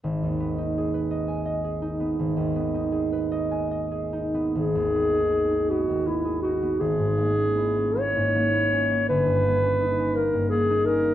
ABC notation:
X:1
M:6/8
L:1/16
Q:3/8=54
K:G#m
V:1 name="Clarinet"
z12 | z12 | G6 F2 E2 F2 | G6 c6 |
B6 A2 G2 A2 |]
V:2 name="Harp"
G,,, D,, B, D G B d g d G D B, | G,,, D,, B, D G B d g d G D B, | G,,, D,, B, D G D B, D,, B, G D B, | G,,, G,, A, C E C A, G,, A, E C A, |
=G,,, =G,, A, C D C A, G,, A, D C A, |]